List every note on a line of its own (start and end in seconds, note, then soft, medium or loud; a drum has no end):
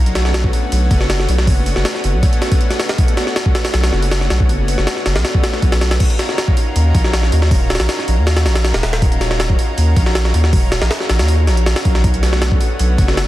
0.00 0.52 B1 medium
0.00 0.51 A3 loud
0.00 0.51 B3 medium
0.00 0.51 C#4 medium
0.00 0.51 D4 medium
0.00 0.51 F#4 loud
0.06 closed hi-hat soft
0.15 snare medium
0.15 open hi-hat medium
0.25 snare medium
0.34 snare loud
0.34 open hi-hat medium
0.44 kick medium
0.53 1.45 A3 medium
0.53 1.45 B3 medium
0.53 1.45 C#4 medium
0.53 1.45 D4 medium
0.53 1.45 F#4 loud
0.53 open hi-hat medium
0.72 0.89 B1 loud
0.72 open hi-hat medium
0.91 1.27 F#1 loud
0.91 kick loud
0.91 open hi-hat medium
1.01 snare soft
1.10 snare loud
1.10 open hi-hat medium
1.20 snare medium
1.28 1.49 B1 loud
1.28 open hi-hat medium
1.38 snare medium
1.47 1.75 F#1 medium
1.47 2.02 A3 loud
1.47 2.02 B3 loud
1.47 2.02 C#4 medium
1.47 2.02 D4 medium
1.47 2.02 F#4 loud
1.47 kick loud
1.47 open hi-hat medium
1.66 open hi-hat medium
1.76 1.84 F#1 loud
1.76 snare medium
1.85 snare loud
1.85 open hi-hat medium
1.95 snare soft
2.04 2.15 F#1 loud
2.04 2.96 A3 loud
2.04 2.96 B3 medium
2.04 2.96 C#4 medium
2.04 2.96 D4 medium
2.04 2.96 F#4 loud
2.04 open hi-hat medium
2.14 2.22 B1 medium
2.23 kick loud
2.23 open hi-hat medium
2.33 closed hi-hat soft
2.42 snare soft
2.42 open hi-hat medium
2.52 kick loud
2.52 open hi-hat medium
2.61 closed hi-hat soft
2.70 snare medium
2.70 open hi-hat medium
2.79 snare loud
2.79 open hi-hat medium
2.89 snare loud
2.89 open hi-hat medium
2.98 3.53 A3 loud
2.98 3.53 B3 loud
2.98 3.53 C#4 loud
2.98 3.53 D4 loud
2.98 3.53 F#4 loud
2.98 kick loud
2.98 open hi-hat medium
3.08 closed hi-hat soft
3.17 snare medium
3.17 open hi-hat medium
3.27 snare medium
3.36 snare loud
3.36 open hi-hat medium
3.46 kick loud
3.55 4.47 A3 loud
3.55 4.47 B3 medium
3.55 4.47 C#4 medium
3.55 4.47 D4 medium
3.55 4.47 F#4 loud
3.55 snare loud
3.55 open hi-hat medium
3.65 snare loud
3.65 open hi-hat medium
3.74 3.91 B1 loud
3.74 snare loud
3.74 open hi-hat medium
3.84 snare loud
3.84 open hi-hat medium
3.93 4.29 F#1 loud
3.93 snare soft
4.02 open hi-hat medium
4.11 snare loud
4.11 open hi-hat medium
4.21 snare medium
4.30 4.51 B1 loud
4.30 snare loud
4.30 open hi-hat medium
4.40 kick medium
4.49 4.76 F#1 medium
4.49 5.04 A3 loud
4.49 5.04 B3 medium
4.49 5.04 C#4 loud
4.49 5.04 D4 medium
4.49 5.04 F#4 loud
4.49 open hi-hat medium
4.68 open hi-hat medium
4.78 4.86 F#1 loud
4.78 snare medium
4.87 snare loud
4.87 open hi-hat medium
4.97 snare soft
5.06 5.17 F#1 loud
5.06 5.98 A3 loud
5.06 5.98 B3 medium
5.06 5.98 C#4 medium
5.06 5.98 D4 medium
5.06 5.98 F#4 loud
5.06 snare loud
5.06 open hi-hat medium
5.16 5.24 B1 medium
5.16 snare loud
5.16 open hi-hat medium
5.25 snare loud
5.25 open hi-hat medium
5.35 kick medium
5.44 snare loud
5.44 open hi-hat medium
5.53 snare soft
5.62 5.99 B1 medium
5.62 kick medium
5.62 open hi-hat medium
5.72 snare loud
5.72 open hi-hat medium
5.81 snare loud
5.81 open hi-hat medium
5.91 snare loud
5.91 open hi-hat medium
6.00 6.55 C#4 loud
6.00 6.55 D#4 loud
6.00 6.55 F4 medium
6.00 6.55 F#4 medium
6.00 6.55 A#4 loud
6.00 kick loud
6.00 open hi-hat loud
6.00 crash loud
6.10 closed hi-hat soft
6.19 snare medium
6.19 open hi-hat medium
6.29 snare medium
6.38 snare loud
6.38 open hi-hat medium
6.48 kick medium
6.57 7.49 C#4 loud
6.57 7.49 D#4 medium
6.57 7.49 F4 medium
6.57 7.49 F#4 medium
6.57 7.49 A#4 loud
6.57 open hi-hat medium
6.75 6.93 D#2 loud
6.75 open hi-hat medium
6.95 7.31 A#1 loud
6.95 kick loud
6.95 open hi-hat medium
7.04 snare medium
7.13 snare loud
7.13 open hi-hat medium
7.23 snare soft
7.32 7.53 D#2 loud
7.32 open hi-hat medium
7.42 snare medium
7.51 7.78 D#1 medium
7.51 8.06 C#4 loud
7.51 8.06 D#4 medium
7.51 8.06 F4 loud
7.51 8.06 F#4 medium
7.51 8.06 A#4 loud
7.51 kick loud
7.51 open hi-hat medium
7.70 snare medium
7.70 open hi-hat medium
7.75 snare medium
7.75 open hi-hat medium
7.80 7.88 A#1 loud
7.80 snare loud
7.80 open hi-hat medium
7.89 snare loud
7.89 open hi-hat medium
7.99 snare soft
8.08 8.19 A#1 loud
8.08 9.00 C#4 loud
8.08 9.00 D#4 medium
8.08 9.00 F4 medium
8.08 9.00 F#4 medium
8.08 9.00 A#4 loud
8.08 open hi-hat medium
8.17 8.47 D#2 medium
8.27 snare loud
8.27 open hi-hat medium
8.36 snare loud
8.36 open hi-hat medium
8.45 8.73 A#1 loud
8.45 snare loud
8.45 open hi-hat medium
8.55 snare loud
8.55 open hi-hat medium
8.65 snare loud
8.65 open hi-hat medium
8.74 8.82 D#1 loud
8.74 snare loud
8.74 open hi-hat medium
8.83 9.57 D#1 medium
8.83 snare loud
8.83 open hi-hat medium
8.93 snare loud
8.93 open hi-hat medium
9.02 9.57 C#4 loud
9.02 9.57 D#4 medium
9.02 9.57 F4 loud
9.02 9.57 F#4 medium
9.02 9.57 A#4 loud
9.02 kick loud
9.02 open hi-hat medium
9.12 closed hi-hat soft
9.21 snare medium
9.21 open hi-hat medium
9.31 snare medium
9.40 snare loud
9.40 open hi-hat medium
9.50 kick medium
9.58 10.51 C#4 loud
9.58 10.51 D#4 medium
9.58 10.51 F4 medium
9.58 10.51 F#4 medium
9.58 10.51 A#4 loud
9.58 open hi-hat medium
9.77 9.95 D#2 loud
9.77 open hi-hat medium
9.96 10.33 A#1 loud
9.96 kick loud
9.96 open hi-hat medium
10.06 snare medium
10.15 snare loud
10.15 open hi-hat medium
10.25 snare soft
10.34 10.54 D#2 loud
10.34 open hi-hat medium
10.44 snare medium
10.53 10.80 D#1 medium
10.53 11.08 C#4 loud
10.53 11.08 D#4 medium
10.53 11.08 F4 medium
10.53 11.08 F#4 loud
10.53 11.08 A#4 loud
10.53 kick loud
10.53 open hi-hat medium
10.72 snare loud
10.72 open hi-hat medium
10.82 10.90 A#1 loud
10.82 snare loud
10.82 open hi-hat medium
10.91 snare loud
10.91 open hi-hat medium
11.01 snare soft
11.10 11.21 A#1 loud
11.10 11.46 C#4 medium
11.10 11.46 D#4 medium
11.10 11.46 F4 medium
11.10 11.46 F#4 medium
11.10 11.46 A#4 loud
11.10 snare loud
11.10 open hi-hat medium
11.19 11.49 D#2 medium
11.19 snare loud
11.19 open hi-hat medium
11.28 open hi-hat medium
11.47 11.75 A#1 loud
11.47 snare soft
11.47 open hi-hat medium
11.57 12.02 C#4 medium
11.57 12.02 D#4 medium
11.57 12.02 F4 medium
11.57 12.02 F#4 medium
11.57 12.02 A#4 loud
11.57 closed hi-hat soft
11.66 snare loud
11.66 open hi-hat medium
11.76 snare loud
11.76 open hi-hat medium
11.85 12.59 B1 medium
11.85 kick loud
11.85 open hi-hat medium
11.95 snare medium
12.04 12.59 A3 loud
12.04 12.59 B3 medium
12.04 12.59 C#4 medium
12.04 12.59 D4 medium
12.04 12.59 F#4 loud
12.04 kick loud
12.04 open hi-hat medium
12.14 closed hi-hat soft
12.23 snare medium
12.23 open hi-hat medium
12.33 snare medium
12.42 snare loud
12.42 open hi-hat medium
12.52 kick medium
12.60 13.28 A3 loud
12.60 13.28 B3 medium
12.60 13.28 C#4 medium
12.60 13.28 D4 medium
12.60 13.28 F#4 loud
12.60 open hi-hat medium
12.79 12.97 B1 loud
12.79 open hi-hat medium
12.98 13.28 F#1 loud
12.98 kick loud
12.98 open hi-hat medium
13.08 snare medium
13.17 snare loud
13.17 open hi-hat medium